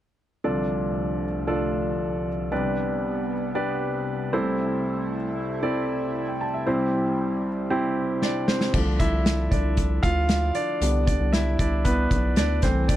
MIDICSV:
0, 0, Header, 1, 5, 480
1, 0, Start_track
1, 0, Tempo, 518583
1, 406, Time_signature, 4, 2, 24, 8
1, 12000, End_track
2, 0, Start_track
2, 0, Title_t, "Grand piano"
2, 0, Program_c, 0, 0
2, 408, Note_on_c, 0, 62, 55
2, 409, Note_on_c, 0, 36, 42
2, 409, Note_on_c, 0, 48, 44
2, 409, Note_on_c, 0, 65, 50
2, 409, Note_on_c, 0, 74, 60
2, 410, Note_on_c, 0, 69, 49
2, 567, Control_c, 0, 64, 127
2, 1155, Note_off_c, 0, 62, 0
2, 1155, Note_off_c, 0, 65, 0
2, 1155, Note_off_c, 0, 74, 0
2, 1156, Note_off_c, 0, 69, 0
2, 1364, Note_on_c, 0, 69, 56
2, 1365, Note_on_c, 0, 62, 60
2, 1365, Note_on_c, 0, 65, 52
2, 1366, Note_on_c, 0, 74, 59
2, 2112, Note_off_c, 0, 69, 0
2, 2113, Note_off_c, 0, 62, 0
2, 2113, Note_off_c, 0, 65, 0
2, 2114, Note_off_c, 0, 74, 0
2, 2291, Note_off_c, 0, 36, 0
2, 2291, Note_off_c, 0, 48, 0
2, 2329, Note_on_c, 0, 48, 43
2, 2330, Note_on_c, 0, 36, 50
2, 2330, Note_on_c, 0, 67, 46
2, 2331, Note_on_c, 0, 62, 51
2, 2331, Note_on_c, 0, 71, 53
2, 2332, Note_on_c, 0, 74, 58
2, 2340, Control_c, 0, 64, 0
2, 2529, Control_c, 0, 64, 127
2, 3076, Note_off_c, 0, 62, 0
2, 3076, Note_off_c, 0, 67, 0
2, 3076, Note_off_c, 0, 71, 0
2, 3077, Note_off_c, 0, 74, 0
2, 3285, Note_on_c, 0, 62, 59
2, 3286, Note_on_c, 0, 71, 59
2, 3287, Note_on_c, 0, 67, 62
2, 3288, Note_on_c, 0, 74, 70
2, 3971, Note_off_c, 0, 48, 0
2, 3972, Note_off_c, 0, 36, 0
2, 4006, Note_off_c, 0, 62, 0
2, 4006, Note_off_c, 0, 71, 0
2, 4007, Note_off_c, 0, 67, 0
2, 4007, Note_on_c, 0, 64, 59
2, 4008, Note_off_c, 0, 74, 0
2, 4008, Note_on_c, 0, 36, 49
2, 4008, Note_on_c, 0, 60, 57
2, 4008, Note_on_c, 0, 72, 70
2, 4009, Note_on_c, 0, 48, 50
2, 4009, Note_on_c, 0, 69, 57
2, 4018, Control_c, 0, 64, 0
2, 4208, Control_c, 0, 64, 127
2, 4775, Note_off_c, 0, 64, 0
2, 4776, Note_off_c, 0, 60, 0
2, 4776, Note_off_c, 0, 69, 0
2, 4776, Note_off_c, 0, 72, 0
2, 5205, Note_on_c, 0, 64, 52
2, 5207, Note_on_c, 0, 60, 58
2, 5208, Note_on_c, 0, 74, 70
2, 5209, Note_on_c, 0, 69, 59
2, 5813, Note_on_c, 0, 79, 43
2, 5890, Note_off_c, 0, 36, 0
2, 5891, Note_off_c, 0, 48, 0
2, 5924, Note_off_c, 0, 79, 0
2, 5933, Note_on_c, 0, 81, 51
2, 5954, Note_off_c, 0, 64, 0
2, 5955, Note_off_c, 0, 60, 0
2, 5955, Note_off_c, 0, 69, 0
2, 5955, Note_off_c, 0, 74, 0
2, 6044, Note_off_c, 0, 81, 0
2, 6051, Note_on_c, 0, 76, 46
2, 6168, Note_on_c, 0, 48, 50
2, 6169, Note_on_c, 0, 67, 59
2, 6170, Note_on_c, 0, 64, 50
2, 6170, Note_on_c, 0, 72, 64
2, 6171, Note_on_c, 0, 36, 49
2, 6171, Note_on_c, 0, 60, 60
2, 6178, Control_c, 0, 64, 0
2, 6277, Note_off_c, 0, 76, 0
2, 6324, Control_c, 0, 64, 127
2, 6916, Note_off_c, 0, 60, 0
2, 6916, Note_off_c, 0, 64, 0
2, 6916, Note_off_c, 0, 67, 0
2, 6916, Note_off_c, 0, 72, 0
2, 7131, Note_on_c, 0, 60, 65
2, 7131, Note_on_c, 0, 72, 66
2, 7132, Note_on_c, 0, 64, 58
2, 7133, Note_on_c, 0, 67, 66
2, 7614, Note_on_c, 0, 74, 69
2, 7623, Note_on_c, 0, 62, 50
2, 7834, Note_off_c, 0, 72, 0
2, 7839, Note_off_c, 0, 62, 0
2, 7844, Note_off_c, 0, 60, 0
2, 7847, Note_on_c, 0, 72, 62
2, 7858, Note_off_c, 0, 74, 0
2, 7858, Note_on_c, 0, 60, 45
2, 7877, Note_off_c, 0, 64, 0
2, 7878, Note_off_c, 0, 67, 0
2, 8051, Note_off_c, 0, 48, 0
2, 8053, Note_off_c, 0, 36, 0
2, 8076, Note_off_c, 0, 60, 0
2, 8083, Note_on_c, 0, 50, 39
2, 8084, Note_on_c, 0, 74, 60
2, 8088, Note_on_c, 0, 53, 37
2, 8093, Note_on_c, 0, 57, 43
2, 8095, Note_off_c, 0, 72, 0
2, 8097, Note_on_c, 0, 62, 47
2, 8099, Control_c, 0, 64, 0
2, 8243, Control_c, 0, 64, 127
2, 8316, Note_off_c, 0, 62, 0
2, 8325, Note_on_c, 0, 76, 84
2, 8333, Note_off_c, 0, 74, 0
2, 8335, Note_on_c, 0, 64, 58
2, 8770, Note_off_c, 0, 50, 0
2, 8772, Note_off_c, 0, 53, 0
2, 8773, Note_off_c, 0, 76, 0
2, 8775, Note_off_c, 0, 57, 0
2, 8779, Note_off_c, 0, 64, 0
2, 8803, Note_on_c, 0, 74, 68
2, 8817, Note_on_c, 0, 62, 60
2, 9260, Note_off_c, 0, 62, 0
2, 9280, Note_on_c, 0, 77, 89
2, 9292, Note_on_c, 0, 65, 61
2, 9300, Note_off_c, 0, 74, 0
2, 9737, Note_off_c, 0, 65, 0
2, 9765, Note_on_c, 0, 74, 81
2, 9777, Note_on_c, 0, 62, 60
2, 9779, Note_off_c, 0, 77, 0
2, 10009, Note_on_c, 0, 50, 37
2, 10017, Note_on_c, 0, 55, 38
2, 10020, Note_on_c, 0, 59, 39
2, 10023, Control_c, 0, 64, 0
2, 10184, Control_c, 0, 64, 127
2, 10220, Note_off_c, 0, 62, 0
2, 10232, Note_off_c, 0, 74, 0
2, 10246, Note_on_c, 0, 74, 70
2, 10260, Note_on_c, 0, 62, 54
2, 10479, Note_off_c, 0, 62, 0
2, 10482, Note_on_c, 0, 76, 74
2, 10494, Note_on_c, 0, 64, 62
2, 10495, Note_off_c, 0, 74, 0
2, 10693, Note_off_c, 0, 50, 0
2, 10698, Note_off_c, 0, 55, 0
2, 10699, Note_off_c, 0, 59, 0
2, 10715, Note_off_c, 0, 64, 0
2, 10728, Note_on_c, 0, 74, 74
2, 10734, Note_off_c, 0, 76, 0
2, 10744, Note_on_c, 0, 62, 60
2, 10782, Note_off_c, 0, 74, 0
2, 10797, Note_off_c, 0, 62, 0
2, 10964, Note_on_c, 0, 71, 74
2, 10981, Note_on_c, 0, 59, 58
2, 11422, Note_off_c, 0, 59, 0
2, 11449, Note_on_c, 0, 74, 76
2, 11462, Note_off_c, 0, 71, 0
2, 11463, Note_on_c, 0, 62, 55
2, 11680, Note_off_c, 0, 62, 0
2, 11688, Note_on_c, 0, 72, 73
2, 11693, Note_on_c, 0, 52, 45
2, 11697, Note_off_c, 0, 74, 0
2, 11697, Note_on_c, 0, 57, 42
2, 11701, Control_c, 0, 64, 0
2, 11701, Note_on_c, 0, 60, 57
2, 11838, Control_c, 0, 64, 127
2, 11923, Note_off_c, 0, 60, 0
2, 11925, Note_on_c, 0, 74, 70
2, 11937, Note_off_c, 0, 72, 0
2, 11941, Note_on_c, 0, 62, 59
2, 12000, Note_off_c, 0, 52, 0
2, 12000, Note_off_c, 0, 57, 0
2, 12000, Note_off_c, 0, 62, 0
2, 12000, Note_off_c, 0, 74, 0
2, 12000, End_track
3, 0, Start_track
3, 0, Title_t, "Analog synth pad"
3, 0, Program_c, 1, 89
3, 404, Note_on_c, 1, 57, 65
3, 405, Note_on_c, 1, 53, 54
3, 406, Note_on_c, 1, 50, 58
3, 407, Note_on_c, 1, 36, 60
3, 2307, Note_off_c, 1, 50, 0
3, 2307, Note_off_c, 1, 53, 0
3, 2307, Note_off_c, 1, 57, 0
3, 2308, Note_off_c, 1, 36, 0
3, 2321, Note_on_c, 1, 59, 73
3, 2323, Note_on_c, 1, 48, 68
3, 2323, Note_on_c, 1, 55, 55
3, 3987, Note_off_c, 1, 59, 0
3, 3988, Note_off_c, 1, 55, 0
3, 4001, Note_on_c, 1, 64, 76
3, 4006, Note_on_c, 1, 57, 68
3, 6145, Note_off_c, 1, 57, 0
3, 6165, Note_on_c, 1, 55, 63
3, 8048, Note_off_c, 1, 64, 0
3, 8049, Note_off_c, 1, 48, 0
3, 8068, Note_off_c, 1, 55, 0
3, 12000, End_track
4, 0, Start_track
4, 0, Title_t, "Analog synth bass"
4, 0, Program_c, 2, 38
4, 8088, Note_on_c, 2, 36, 89
4, 8423, Note_off_c, 2, 36, 0
4, 8442, Note_on_c, 2, 36, 77
4, 8780, Note_off_c, 2, 36, 0
4, 8807, Note_on_c, 2, 36, 85
4, 9255, Note_off_c, 2, 36, 0
4, 9286, Note_on_c, 2, 38, 86
4, 9734, Note_off_c, 2, 38, 0
4, 10007, Note_on_c, 2, 36, 96
4, 10343, Note_off_c, 2, 36, 0
4, 10369, Note_on_c, 2, 36, 94
4, 10704, Note_off_c, 2, 36, 0
4, 10729, Note_on_c, 2, 36, 78
4, 11176, Note_off_c, 2, 36, 0
4, 11207, Note_on_c, 2, 35, 95
4, 11432, Note_off_c, 2, 35, 0
4, 11448, Note_on_c, 2, 38, 68
4, 11672, Note_off_c, 2, 38, 0
4, 11686, Note_on_c, 2, 36, 80
4, 12000, Note_off_c, 2, 36, 0
4, 12000, End_track
5, 0, Start_track
5, 0, Title_t, "Drums"
5, 7610, Note_on_c, 9, 38, 42
5, 7703, Note_off_c, 9, 38, 0
5, 7850, Note_on_c, 9, 38, 71
5, 7942, Note_off_c, 9, 38, 0
5, 7967, Note_on_c, 9, 38, 69
5, 8060, Note_off_c, 9, 38, 0
5, 8088, Note_on_c, 9, 49, 69
5, 8089, Note_on_c, 9, 36, 77
5, 8180, Note_off_c, 9, 49, 0
5, 8181, Note_off_c, 9, 36, 0
5, 8328, Note_on_c, 9, 42, 56
5, 8329, Note_on_c, 9, 36, 64
5, 8421, Note_off_c, 9, 42, 0
5, 8422, Note_off_c, 9, 36, 0
5, 8570, Note_on_c, 9, 42, 60
5, 8571, Note_on_c, 9, 38, 97
5, 8663, Note_off_c, 9, 38, 0
5, 8663, Note_off_c, 9, 42, 0
5, 8808, Note_on_c, 9, 36, 77
5, 8813, Note_on_c, 9, 42, 47
5, 8901, Note_off_c, 9, 36, 0
5, 8906, Note_off_c, 9, 42, 0
5, 9043, Note_on_c, 9, 42, 51
5, 9048, Note_on_c, 9, 36, 58
5, 9136, Note_off_c, 9, 42, 0
5, 9140, Note_off_c, 9, 36, 0
5, 9287, Note_on_c, 9, 36, 71
5, 9288, Note_on_c, 9, 42, 53
5, 9380, Note_off_c, 9, 36, 0
5, 9381, Note_off_c, 9, 42, 0
5, 9522, Note_on_c, 9, 42, 68
5, 9528, Note_on_c, 9, 38, 89
5, 9615, Note_off_c, 9, 42, 0
5, 9621, Note_off_c, 9, 38, 0
5, 9762, Note_on_c, 9, 42, 58
5, 9855, Note_off_c, 9, 42, 0
5, 10011, Note_on_c, 9, 42, 76
5, 10103, Note_off_c, 9, 42, 0
5, 10250, Note_on_c, 9, 42, 58
5, 10251, Note_on_c, 9, 36, 64
5, 10343, Note_off_c, 9, 36, 0
5, 10343, Note_off_c, 9, 42, 0
5, 10490, Note_on_c, 9, 42, 61
5, 10491, Note_on_c, 9, 38, 87
5, 10583, Note_off_c, 9, 42, 0
5, 10584, Note_off_c, 9, 38, 0
5, 10730, Note_on_c, 9, 36, 75
5, 10732, Note_on_c, 9, 42, 53
5, 10822, Note_off_c, 9, 36, 0
5, 10824, Note_off_c, 9, 42, 0
5, 10966, Note_on_c, 9, 42, 59
5, 10970, Note_on_c, 9, 36, 64
5, 11059, Note_off_c, 9, 42, 0
5, 11063, Note_off_c, 9, 36, 0
5, 11208, Note_on_c, 9, 36, 72
5, 11208, Note_on_c, 9, 42, 56
5, 11300, Note_off_c, 9, 42, 0
5, 11301, Note_off_c, 9, 36, 0
5, 11443, Note_on_c, 9, 42, 66
5, 11450, Note_on_c, 9, 38, 80
5, 11536, Note_off_c, 9, 42, 0
5, 11542, Note_off_c, 9, 38, 0
5, 11683, Note_on_c, 9, 42, 58
5, 11688, Note_on_c, 9, 38, 33
5, 11689, Note_on_c, 9, 36, 67
5, 11775, Note_off_c, 9, 42, 0
5, 11780, Note_off_c, 9, 38, 0
5, 11781, Note_off_c, 9, 36, 0
5, 11930, Note_on_c, 9, 36, 87
5, 11931, Note_on_c, 9, 42, 79
5, 12000, Note_off_c, 9, 36, 0
5, 12000, Note_off_c, 9, 42, 0
5, 12000, End_track
0, 0, End_of_file